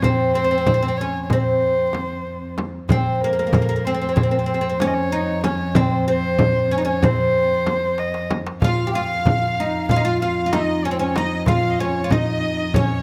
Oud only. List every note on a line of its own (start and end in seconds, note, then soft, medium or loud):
0.04 0.34 C4 medium
0.35 0.43 C4 medium
0.44 0.50 C4 medium
0.51 0.57 C4 medium
0.58 0.65 C4 medium
0.67 0.73 C4 medium
0.74 0.81 C4 medium
0.83 0.87 C4 medium
0.88 0.95 C4 medium
1.01 1.32 C#4 medium
1.33 2.55 C4 medium
2.92 3.23 C4 medium
3.24 3.30 A#3 medium
3.33 3.38 A#3 medium
3.39 3.45 A#3 medium
3.47 3.53 A#3 medium
3.54 3.60 A#3 medium
3.62 3.68 A#3 medium
3.69 3.75 A#3 medium
3.76 3.83 A#3 medium
3.87 3.93 C4 medium
3.94 4.00 C4 medium
4.01 4.08 C4 medium
4.09 4.15 C4 soft
4.16 4.22 C4 medium
4.23 4.30 C4 medium
4.31 4.38 C4 medium
4.39 4.45 C4 medium
4.46 4.53 C4 medium
4.54 4.60 C4 medium
4.61 4.68 C4 medium
4.70 4.76 C4 medium
4.82 5.12 C#4 loud
5.12 5.44 D#4 medium
5.44 5.76 C#4 medium
5.76 6.07 C4 medium
6.08 6.67 C4 medium
6.71 6.77 C#4 medium
6.78 6.84 D#4 medium
6.85 7.03 C#4 medium
7.03 8.26 C4 medium
8.64 8.87 F4 medium
8.87 8.94 G4 medium
8.95 9.60 F4 medium
9.60 9.91 D#4 medium
9.91 9.96 F4 loud
9.96 10.03 D#4 medium
10.05 10.21 F4 medium
10.22 10.45 F4 medium
10.46 10.52 F4 medium
10.53 10.85 D#4 medium
10.85 10.91 C#4 medium
10.91 10.98 C4 medium
10.99 11.17 C#4 medium
11.18 11.48 D#4 medium
11.48 11.80 F4 medium
11.80 12.04 C#4 medium
12.04 12.11 F4 medium
12.12 12.76 D#4 medium
12.76 13.02 C#4 medium